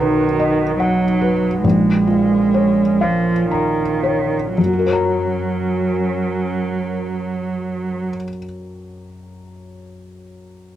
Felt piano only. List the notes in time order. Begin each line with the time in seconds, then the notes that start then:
Already playing: B1 D#4
0.00 B4
0.40 D#5
0.80 F#5
1.21 B4
1.64 A#1
2.07 F4
2.54 C#5
3.01 F5
3.51 A#5
4.03 C#5
4.58 F#2
4.66 F#3
4.73 F#4
4.79 A#4
4.87 C#5
4.93 A#5